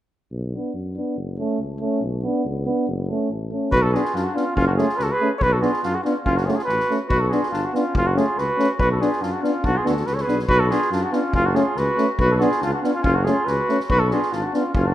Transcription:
0.31 B1
0.53 B3 D4
0.74 F#2
0.96 B3 D4
1.16 F#1
1.38 A3 C#4
1.59 C#2
1.80 A3 C#4
2.01 B1
2.22 B3 D4
2.45 C#2
2.65 B3 D4
2.87 F#1
3.09 A3 C#4
3.29 A1
3.50 A3 C#4
3.72 B1 F#4 B4, kick
3.82 F#4 A4
3.94 B3 D4 F4 G#4, snare
4.05 snare
4.14 F#2 D4 F4, snare
4.24 D4 F#4
4.34 B3 C#4 D4 F4, snare
4.56 F#1 C#4 F4, kick
4.67 D4 F#4
4.76 A3 C#4 F4 G#4, snare
4.89 snare
4.97 C#2 F#4 B4, snare
5.03 A4
5.07 F#4 B4
5.14 G#4
5.20 A3 C#4
5.38 B1 F#4 A4 C#5, kick
5.43 B4
5.52 F#4 A4
5.61 B3 D4 F4 G#4, snare
5.73 snare
5.83 F#2 D4 F4, snare
5.92 F4 F#4 G#4
6.04 B3 C#4 D4 F4, snare
6.25 F#1 C#4 F4, kick
6.37 D4 F#4, snare
6.45 A3 C#4 F4 G#4, snare
6.51 D4 F#4
6.56 F4 G#4, snare
6.64 A1 F#4 B4
6.69 snare
6.80 snare
6.90 A3 C#4, snare
7.08 B1 F#4 B4, kick
7.20 F#4 A4
7.29 B3 D4 F4 G#4, snare
7.43 snare
7.51 G1 D4 F4, snare
7.64 D4 F#4
7.73 B3 C#4 D4 F4, snare
7.94 F#1 C#4 F4, kick
8.06 D4 F#4
8.15 A3 C#4 F4 G#4, snare
8.38 C#2 F#4 B4, snare
8.58 A3 C#4, snare
8.79 B1 F#4 B4, kick
8.91 F#4 A4
9.00 B3 D4 F4 G#4, snare
9.12 snare
9.21 F#2 D4 F4, snare
9.31 D4 F#4
9.41 B3 C#4 D4 F4, snare
9.63 B1 D4 F#4, kick
9.76 F4 G#4
9.84 D2 B3 D4 F#4 A4, snare
9.97 snare
10.06 C#2 F#4 B4, snare
10.13 A4 C#5
10.17 B4, snare
10.23 B3 G#4
10.27 B1 D4, snare
10.39 snare
10.48 B1 F#4 B4, kick
10.60 F#4 A4
10.69 B3 D4 F4 G#4, snare
10.82 snare
10.91 F#2 D4 F4, snare
11.03 D4 F#4
11.12 B3 C#4 D4 F4, snare
11.33 F#1 C#4 F4, kick
11.46 D4 F#4
11.53 A3 C#4 F4 G#4, snare
11.76 C#2 F#4 B4, snare
11.97 A3 C#4, snare
12.19 B1 F#4 B4, kick
12.31 F#4 G#4 A4 B4
12.36 B3 F#4 A4
12.40 D4 F4 G#4, snare
12.51 snare
12.61 C#2 D4 F4, snare
12.74 D4 F#4
12.82 B3 C#4 D4 F4, snare
12.87 C#4 F4
12.92 C#4 F4
13.01 F#1 C#4 F4, kick
13.15 D4 F#4
13.24 A3 C#4 F4 G#4, snare
13.45 C#2 F#4 B4, snare
13.68 A3 C#4, snare
13.80 snare
13.89 B1 F#4 B4, kick
13.99 F#4 A4
14.11 B3 D4 F4 G#4, snare
14.22 snare
14.32 G#1 D4 F4, snare
14.44 D4 F#4
14.53 B3 C#4 D4 F4, snare
14.75 F#1 C#4 F4, kick
14.85 D4 F#4

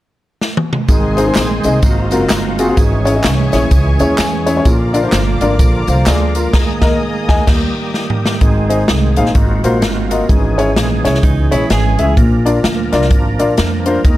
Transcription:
0.41 snare
0.57 high tom
0.73 mid tom
0.88 G#1 G#2 D#3 G#3 C4 G#4 C5 D#5 G#5 C6, kick, closed hi-hat, tambourine
1.17 C4 D#4 G#4 C5, closed hi-hat, tambourine
1.27 C4 D#4 G#4 C5
1.35 A#1, snare, clap, closed hi-hat, tambourine
1.63 C2 C4 D#4 G#4 D#5, closed hi-hat, tambourine
1.82 G#1 G#2 A#3 C4 F4 F#4 D#5 F5 A#5, kick, closed hi-hat, tambourine
2.11 F#1 C4 F4 F#4 A#4, closed hi-hat, tambourine
2.29 G1, snare, clap, closed hi-hat, tambourine
2.58 C4 F4 F#4 G#4, closed hi-hat, tambourine
2.68 C4 F4 F#4 G#4
2.76 G#1 G#2 E3 G#3 C#4 G#4 C#5 E5 G#5 C#6, kick, closed hi-hat, tambourine
3.05 C#4 E4 G#4 C#5, closed hi-hat, tambourine
3.14 C#4 E4 G#4
3.24 C2, snare, clap, closed hi-hat, tambourine
3.52 A#1 C#4 E4 G#4 C#5, snare, closed hi-hat, tambourine
3.71 C#2, kick, closed hi-hat, tambourine
3.99 D#2 C#4 E4 G#4 C#5, closed hi-hat, tambourine
4.18 E2 G#5, snare, clap, closed hi-hat, tambourine
4.46 C#4 E4 G#4 C#5 E5, closed hi-hat, tambourine
4.56 C#4 E4 G#4 C#5
4.65 A#1 A#2 D3 F3 A#3 F4 D5 F5 A#5 D6, kick, closed hi-hat, tambourine
4.93 D4 F4 A#4 D5, closed hi-hat, tambourine
5.03 D4 F4 A#4 C5
5.12 G1, snare, clap, closed hi-hat, tambourine
5.41 G#1 D4 F4 A#4 D5, closed hi-hat, tambourine
5.59 A#1, kick, closed hi-hat, tambourine
5.87 C2 C5 F5, closed hi-hat, tambourine
6.06 D2 G#4 D5, snare, clap, closed hi-hat, tambourine
6.35 F4 A#4, closed hi-hat, tambourine
6.53 D#2 D#3 G#3 G#4 D#5 G#5 D#6, kick, snare, crash
6.82 D#2 A#4 D#5, kick, snare
7.29 D#2 D#5 G#5, kick, snare
7.47 D#2 G3 G4 G5 D#6, kick, snare, crash
7.94 snare
8.10 mid tom
8.26 snare
8.41 G#1 G#2 D#3 G#3 C4 G#4, kick, closed hi-hat
8.69 D#4 G#4 C5 D#5, closed hi-hat
8.88 C2, snare, closed hi-hat
9.16 A#1 D#4 G#4 C5 F5, closed hi-hat
9.26 snare
9.35 G#1 G#2 A#3 F4 F#4, kick, closed hi-hat
9.64 A#1 F4 F#4 A#4 C5, closed hi-hat
9.82 G1, snare, closed hi-hat
10.11 F4 F#4 A#4 D#5, closed hi-hat
10.29 G#1 G#2 E3 G#3 C#4 G#4, kick, closed hi-hat
10.58 C#4 E4 G#4 C#5, closed hi-hat
10.76 A#1, snare, closed hi-hat
11.04 C2 C#4 E4 G#4 C#5, snare, closed hi-hat
11.14 snare
11.23 C#2 D#4, kick, closed hi-hat
11.51 A#1 C#4 E4 G#4 C#5, closed hi-hat
11.70 G#1 G#4, snare, closed hi-hat
11.99 C#2 C#4 E4 G#4 E5, closed hi-hat
12.17 A#1 A#2 F3 A#3 D4 A#4, kick, closed hi-hat
12.45 D4 F4 A#4 D5, closed hi-hat
12.64 D2, snare, closed hi-hat
12.92 C2 D4 F4 A#4 D5, snare, closed hi-hat
13.02 snare
13.11 G#1, kick, closed hi-hat
13.39 A#1 D4 F4 A#4 D5, closed hi-hat
13.57 F2, snare, closed hi-hat
13.86 D4 F4 A#4 C5, closed hi-hat
14.04 D#2 D#3 G#3 D#4, kick, closed hi-hat

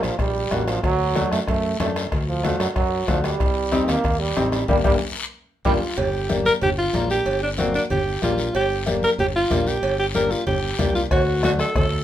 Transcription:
Already playing: G4
0.02 A#1 F3, bombo rim, high timbale, short guiro
0.19 A#1 G3, bombo low, bombo rim, high conga, high timbale, long guiro
0.51 A1 A#3 D4 F#4, bombo rim, high conga, high timbale, low timbale, short guiro
0.67 F3, bombo rim, high timbale, short guiro
0.83 D2 F#3, bombo low, bombo rim, high conga, high timbale, long guiro
1.15 A3 D4 F#4, bombo rim, high conga, high timbale, short guiro
1.32 F#2 A3, bombo rim, high timbale, short guiro
1.48 F#2 A3, bombo low, bombo rim, high conga, high timbale, long guiro
1.80 F#2 A3 D4 A4, bombo rim, high conga, high timbale, low timbale, short guiro
1.96 bombo rim, high timbale, short guiro
2.12 D2, bombo low, bombo rim, high conga, high timbale, long guiro
2.28 F3
2.44 A3 D4 F#4, bombo rim, high conga, high timbale, short guiro
2.60 F#2 F#3, bombo rim, high timbale, short guiro
2.75 F#2 F#3, bombo low, bombo rim, high conga, high timbale, long guiro
3.08 D2 F3 A3 D4 F#4, bombo low, bombo rim, high conga, high timbale, short guiro
3.23 G3, bombo rim, high timbale, short guiro
3.40 C2, bombo low, bombo rim, high conga, high timbale, long guiro
3.72 C4 D#4 G4, bombo rim, high conga, high timbale, short guiro
3.87 D#2 A#3, bombo rim, high timbale, short guiro
4.04 D#2, bombo low, bombo rim, high conga, high timbale, long guiro
4.19 G3
4.37 A1 C4 D#4 G4, bombo rim, high conga, high timbale, short guiro
4.52 G3, bombo rim, high timbale, short guiro
4.68 G1 G3 A#3 D4 G4, bombo low, high conga, high timbale, long guiro
4.84 G1 G3 A#3 D4 G4, bombo low, high conga, high timbale, long guiro
5.65 G1 G3 A#3 D4 F4 G4, bombo low, high conga, high timbale, long guiro
5.97 G1 G4, cowbell, high conga, low conga, long guiro
6.29 A#3 D4 G4, cowbell, high conga, short guiro
6.45 A#4, short guiro
6.61 G1 G4, cowbell, high conga, low conga, long guiro
6.78 F4
6.93 A#1 A#3 D4 A#4, cowbell, high conga, low timbale, short guiro
7.10 G4, short guiro
7.26 G1, cowbell, high conga, long guiro
7.43 D4
7.58 A#3 C4 D4 F#4, cowbell, high conga, short guiro
7.74 D4, short guiro
7.90 G1 G4, cowbell, high conga, low conga, long guiro
8.22 A#1 A#3 D4 F4 G4, cowbell, high conga, low timbale, short guiro
8.38 short guiro
8.54 G1 G4, cowbell, high conga, long guiro
8.86 A#3 D4 G4, cowbell, high conga, short guiro
9.03 A#4, short guiro
9.18 G1 G4, cowbell, high conga, low conga, long guiro
9.36 F4
9.50 A#1 A#3 D4 G4, cowbell, high conga, low conga, low timbale, short guiro
9.67 G4, short guiro
9.82 G1, cowbell, high conga, long guiro
9.99 G4
10.14 A#3 D4 G4 A#4, cowbell, high conga, short guiro
10.31 F4, short guiro
10.46 G1 G4, cowbell, high conga, low conga, long guiro
10.79 C2 A#3 D4 G4, cowbell, high conga, low conga, low timbale, short guiro
10.95 F4, short guiro
11.11 D2 F#4, bombo low, bombo rim, cowbell, high conga, low conga, long guiro
11.43 A3 D4 F#4, bombo rim, cowbell, high conga, short guiro
11.59 A4, bombo rim, short guiro
11.75 D2 A4, bombo low, bombo rim, cowbell, high conga, low conga, long guiro

